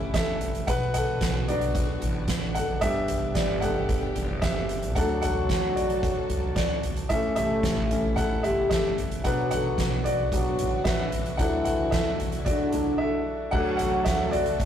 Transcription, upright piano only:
0.00 0.70 E3 medium
0.00 0.69 A3 soft
0.00 0.69 C#4 medium
0.00 0.70 G4 medium
0.00 0.16 A4 medium
0.00 0.69 B4 medium
0.00 0.14 E5 loud
0.00 0.67 F#5 loud
0.00 0.69 G5 loud
0.14 0.65 A4 medium
0.14 0.64 E5 medium
0.67 0.93 B4 medium
0.67 0.92 F#5 loud
0.94 1.45 A4 medium
0.94 1.44 F#5 loud
1.48 2.24 F#3 soft
1.48 2.25 B3 soft
1.48 2.25 D4 medium
1.48 2.52 F#4 medium
1.48 2.58 D5 medium
2.55 2.81 A4 medium
2.55 2.82 F#5 loud
2.81 3.60 G3 medium
2.81 3.60 B3 medium
2.81 3.61 D4 medium
2.81 3.33 G4 medium
2.81 3.37 E5 loud
3.34 3.61 G4 medium
3.34 3.60 D5 medium
3.61 3.86 G3 soft
3.61 3.86 B3 soft
3.61 3.86 D4 soft
3.61 4.39 A4 medium
3.61 4.44 F#5 loud
4.41 4.93 G4 medium
4.41 4.92 E5 medium
4.95 5.32 F#3 medium
4.95 5.32 A3 medium
4.95 5.32 D4 medium
4.95 5.22 A4 medium
4.95 5.20 F#5 loud
5.22 5.73 A4 medium
5.22 5.72 F#5 loud
5.75 6.53 F#4 medium
5.75 6.52 D5 medium
6.55 7.07 F#4 medium
6.55 7.06 D5 medium
7.09 7.89 E3 medium
7.09 7.89 A3 medium
7.09 7.89 C#4 medium
7.09 7.36 A4 medium
7.09 7.34 E5 medium
7.36 8.14 G4 medium
7.36 8.13 E5 medium
7.90 8.15 E3 soft
7.90 8.15 A3 soft
7.90 8.15 C#4 medium
8.16 8.43 A4 medium
8.16 8.41 F#5 loud
8.43 8.70 G4 medium
8.43 8.68 E5 medium
8.69 9.21 A4 medium
8.69 9.25 E5 medium
9.24 10.01 F#3 medium
9.24 10.01 B3 medium
9.24 10.02 D4 medium
9.24 9.50 B4 medium
9.24 9.49 F#5 loud
9.51 10.02 A4 medium
9.51 10.06 F#5 loud
10.04 10.82 F#4 medium
10.04 10.87 D5 medium
10.33 10.56 F#3 medium
10.33 10.57 B3 soft
10.33 10.57 D4 medium
10.84 11.36 B4 medium
10.84 11.40 E5 medium
11.37 12.72 F#3 medium
11.37 12.72 D4 medium
11.37 12.73 E4 medium
11.37 11.64 A4 medium
11.37 11.63 F#5 loud
11.64 11.91 A4 medium
11.64 11.90 F#5 medium
11.91 12.43 A4 medium
11.91 12.47 E5 medium
12.45 13.23 F#4 medium
12.45 13.22 D5 medium
12.73 12.97 F#3 soft
12.73 12.97 D4 soft
12.73 12.98 E4 medium
12.98 13.50 A4 medium
12.98 13.54 E5 medium
13.51 14.65 F#3 medium
13.51 14.65 A3 medium
13.51 14.65 D4 medium
13.51 13.78 A4 medium
13.51 13.76 F#5 loud
13.77 14.05 A4 medium
13.77 14.06 F#5 medium
14.04 14.32 A4 medium
14.04 14.33 E5 medium
14.31 14.65 F#4 medium
14.31 14.65 D5 loud

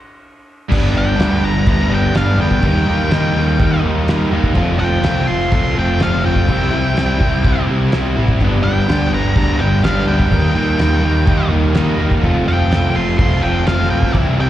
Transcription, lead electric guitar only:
0.98 1.43 G5 loud
1.45 1.67 A#5 medium
1.69 1.91 A#5 medium
1.94 2.16 G5 medium
2.17 2.39 F5 medium
2.41 3.80 G5 loud
4.80 5.26 G5 loud
5.27 5.51 C6 medium
5.53 5.75 C6 medium
5.79 6.00 G5 medium
6.03 6.25 F5 loud
6.26 7.65 G5 loud
8.64 9.10 G5 loud
9.14 9.36 A#5 medium
9.37 9.60 A#5 medium
9.59 9.83 G5 medium
9.84 10.07 F5 medium
10.08 11.48 G5 loud
12.48 12.94 G5 loud
12.96 13.17 C6 medium
13.18 13.42 C6 medium
13.43 13.66 G5 loud
13.67 13.90 F5 loud
13.90 14.14 G5 loud
14.41 14.50 G5 loud

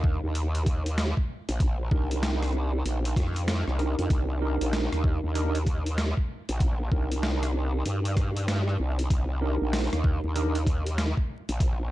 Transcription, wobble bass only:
0.00 0.21 D#2 medium
0.24 1.14 D#2 loud
1.49 1.90 A#1 loud
1.91 2.83 C2 loud
2.85 3.15 A#1 loud
3.16 3.64 F2 loud
3.68 3.96 C2 loud
3.99 4.09 F2 loud
4.10 4.58 C2 loud
4.61 4.89 A#1 loud
4.92 5.21 D#2 loud
5.24 6.14 D#2 loud
6.49 6.90 A#1 loud
6.92 7.84 C2 loud
7.86 8.77 G2 loud
8.80 9.09 C2 loud
9.10 9.58 C2 loud
9.62 9.90 A#1 medium
9.93 10.21 D#2 loud
10.24 11.15 D#2 loud
11.49 11.90 A#1 medium

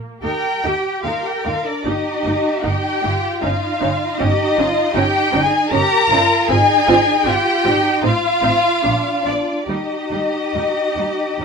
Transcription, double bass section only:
0.22 0.30 D#2 medium
0.64 0.72 D#2 medium
1.04 1.12 D#2 medium
1.45 1.53 D#2 medium
1.85 1.93 G1 medium
2.25 2.33 G1 medium
2.64 2.72 G1 medium
3.04 3.12 G1 medium
3.44 3.52 G1 medium
3.82 3.90 G1 medium
4.21 4.29 G1 medium
4.58 4.66 G1 medium
4.95 5.03 G1 medium
5.34 5.42 G1 medium
5.72 5.80 G1 medium
6.10 6.18 G1 medium
6.49 6.57 G#1 medium
6.88 6.96 G#1 medium
7.25 7.33 G#1 medium
7.65 7.73 G#1 medium
8.03 8.11 A1 medium
8.43 8.51 A1 medium
8.84 8.92 A#1 medium
9.25 9.33 A#1 medium
9.67 9.75 D#2 medium
10.10 10.18 D#2 medium
10.54 10.62 D#2 medium
10.95 11.03 D#2 medium
11.37 11.45 D#2 medium

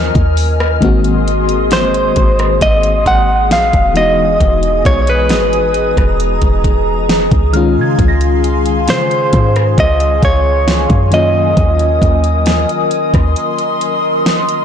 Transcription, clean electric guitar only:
1.73 2.62 C5 medium
2.62 3.07 D#5 loud
3.07 3.52 F#5 loud
3.52 3.97 F5 loud
3.97 4.86 D#5 loud
4.86 5.01 C#5 medium
5.02 5.08 C#5 medium
5.10 7.51 B4 medium
8.90 9.79 C5 medium
9.80 10.24 D#5 loud
10.25 11.13 C#5 loud
11.14 14.22 D#5 loud

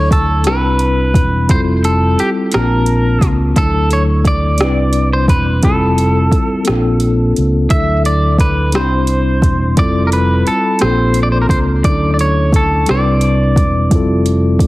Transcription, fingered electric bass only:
0.00 0.48 D2 medium
0.48 1.12 C2 medium
1.15 1.46 E1 medium
1.50 2.15 F1 medium
2.20 muted fingered electric bass stroke soft
2.55 3.19 A#1 medium
3.22 3.53 C#2 medium
3.57 4.62 D2 loud
4.62 5.26 C2 medium
5.29 5.60 E1 medium
5.64 6.28 F1 medium
6.32 muted fingered electric bass stroke soft
6.69 7.33 A#1 medium
7.38 7.68 C#2 medium
7.71 8.76 D2 medium
8.76 9.40 C2 medium
9.43 9.74 E1 medium
9.78 10.42 F1 medium
10.48 muted fingered electric bass stroke soft
10.82 11.46 A#1 medium
11.50 11.81 C#2 medium
11.85 12.84 D2 medium
12.90 13.53 C2 medium
13.57 13.88 E1 medium
13.92 14.56 F1 medium
14.60 muted fingered electric bass stroke soft

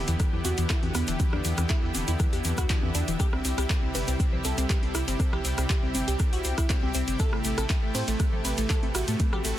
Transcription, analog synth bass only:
0.08 0.15 E2 medium
0.33 0.40 E2 medium
0.45 0.53 E2 loud
0.58 0.65 E2 medium
0.83 0.90 E2 medium
0.95 1.03 E2 loud
1.08 1.15 E1 medium
1.33 1.40 E2 medium
1.45 1.53 E2 loud
1.58 1.65 E2 medium
1.83 1.90 E2 medium
1.95 2.03 E1 loud
2.08 2.15 E2 medium
2.33 2.40 E2 medium
2.45 2.53 E2 loud
2.58 2.65 E2 medium
2.83 2.90 E2 medium
2.95 3.03 E2 loud
3.08 3.15 E1 medium
3.33 3.40 C2 medium
3.45 3.53 C2 loud
3.58 3.65 C2 medium
3.83 3.90 C2 medium
3.95 4.03 G1 loud
4.08 4.15 C2 medium
4.33 4.40 C2 medium
4.45 4.53 C2 loud
4.58 4.65 C2 medium
4.83 4.90 C2 medium
4.95 5.03 C2 loud
5.08 5.15 G1 medium
5.33 5.40 C2 medium
5.45 5.53 C2 loud
5.58 5.65 C2 medium
5.83 5.90 C2 medium
5.95 6.03 G1 loud
6.08 6.15 C2 medium
6.33 6.40 C2 medium
6.45 6.53 C2 loud
6.58 6.65 C2 medium
6.83 6.90 C2 medium
6.95 7.03 C2 loud
7.08 7.15 G1 medium
7.33 7.40 A1 medium
7.45 7.53 A1 loud
7.58 7.65 A1 medium
7.83 7.90 A1 medium
7.95 8.03 A2 loud
8.08 8.15 A1 medium
8.33 8.40 A1 medium
8.45 8.53 A1 loud
8.58 8.65 A1 medium
8.83 8.90 A1 medium
8.95 9.03 A1 loud
9.08 9.15 A2 medium
9.33 9.40 A1 medium
9.45 9.53 A1 loud

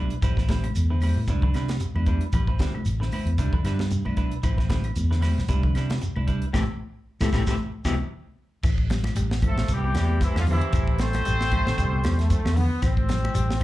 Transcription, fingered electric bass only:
0.23 0.70 A1 medium
0.76 1.12 E2 medium
1.16 1.27 A2 medium
1.28 1.51 C2 medium
1.55 1.78 C3 medium
1.95 2.18 E2 medium
2.33 2.57 A1 medium
2.85 3.09 A1 medium
3.25 3.36 E2 medium
3.38 3.51 C2 medium
3.64 4.00 G2 medium
4.06 4.29 B1 medium
4.44 4.90 A1 medium
4.96 5.33 E2 medium
5.38 5.48 B1 medium
5.49 5.72 C2 medium
5.74 5.98 C3 medium
6.17 6.40 C2 medium
6.54 6.65 A1 medium
7.21 7.29 A1 medium
7.33 7.43 A1 medium
7.47 7.55 A1 medium
7.85 7.96 C2 medium
8.63 9.10 A1 medium
9.15 9.52 A1 medium
9.56 9.67 A1 loud
9.68 9.92 C2 loud
9.94 10.18 E2 medium
10.35 10.59 E2 medium
10.73 11.20 A1 medium
11.26 11.63 A1 medium
11.67 11.77 A1 medium
11.78 12.01 C2 loud
12.04 12.27 E2 medium
12.45 12.68 E2 medium
12.83 13.30 A1 medium
13.35 13.64 A1 medium

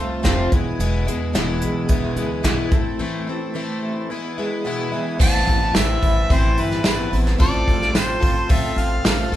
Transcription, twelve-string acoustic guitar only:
0.00 0.23 F3 medium
0.00 0.22 A3 soft
0.00 0.22 C4 medium
0.00 0.23 F4 medium
0.23 0.51 F2 medium
0.23 0.51 C3 medium
0.23 0.52 F3 medium
0.23 0.51 A3 medium
0.23 0.52 C4 medium
0.23 0.52 F4 medium
0.53 0.79 E3 soft
0.53 0.79 G#3 medium
0.53 0.80 B3 medium
0.53 0.79 E4 medium
0.80 1.07 E2 medium
0.80 1.07 B2 medium
0.80 1.07 E3 medium
0.80 1.07 G#3 medium
0.80 1.07 B3 loud
0.80 1.06 E4 medium
1.07 1.34 E3 soft
1.07 1.34 G#3 medium
1.07 1.34 B3 medium
1.07 1.34 E4 medium
1.33 1.89 E2 medium
1.33 1.89 B2 medium
1.33 1.89 E3 medium
1.33 1.89 G#3 medium
1.33 1.89 B3 medium
1.33 1.91 E4 medium
1.89 2.17 E3 medium
1.89 2.17 G#3 medium
1.89 2.16 B3 medium
1.89 2.15 E4 medium
2.17 2.43 E3 soft
2.17 2.43 G#3 soft
2.17 2.44 B3 medium
2.17 2.44 E4 medium
2.43 2.72 E2 medium
2.43 2.72 B2 medium
2.43 2.72 E3 medium
2.43 2.72 G#3 medium
2.43 2.73 B3 medium
2.43 2.72 E4 loud
2.73 2.99 A3 soft
2.73 2.99 C4 medium
2.73 2.99 E4 medium
2.99 3.27 A2 medium
2.99 3.27 E3 medium
2.99 3.28 A3 medium
2.99 3.28 C4 medium
2.99 3.26 E4 medium
3.27 3.54 A3 medium
3.27 3.54 C4 medium
3.27 3.55 E4 medium
3.54 4.10 A2 medium
3.54 4.09 E3 medium
3.54 4.10 A3 medium
3.54 4.11 C4 medium
3.54 4.11 E4 medium
4.10 4.38 E3 medium
4.10 4.38 G#3 medium
4.10 4.38 B3 medium
4.10 4.37 E4 medium
4.38 4.65 E3 medium
4.38 4.65 G#3 medium
4.38 4.65 B3 medium
4.38 4.65 E4 medium
4.65 4.93 E2 medium
4.65 4.93 B2 medium
4.65 4.93 E3 medium
4.65 4.92 G#3 medium
4.65 4.92 B3 medium
4.65 4.91 E4 medium
4.92 5.18 E3 soft
4.92 5.19 G#3 soft
4.92 5.19 B3 medium
4.92 5.19 E4 medium
5.19 5.75 A2 medium
5.19 5.75 E3 medium
5.19 5.75 B3 medium
5.19 5.75 C4 medium
5.19 5.76 E4 loud
5.76 6.29 E3 medium
5.76 6.31 C4 medium
5.76 6.30 E4 medium
6.30 6.86 A2 medium
6.30 6.81 E3 medium
6.30 6.83 C4 medium
6.30 6.84 E4 medium
6.83 7.12 E3 medium
6.83 7.11 B3 medium
6.83 7.12 C4 medium
6.83 7.09 E4 medium
7.11 7.39 B3 soft
7.11 7.38 C4 soft
7.11 7.39 E4 medium
7.38 7.94 A2 medium
7.38 7.93 F3 medium
7.38 7.92 C4 medium
7.38 7.94 F4 medium
7.38 7.94 A4 loud
7.93 8.22 F3 soft
7.93 8.21 C4 medium
7.93 8.20 F4 medium
7.93 8.19 A4 medium
8.20 8.49 C4 soft
8.20 8.49 F4 soft
8.20 8.49 A4 soft
8.49 9.05 A2 medium
8.49 9.04 F3 medium
8.49 9.03 C4 medium
8.49 9.05 F4 medium
8.49 9.05 A4 medium
9.04 9.33 F3 medium
9.04 9.32 C4 medium
9.04 9.32 F4 medium
9.04 9.31 A4 medium
9.32 9.36 A4 medium

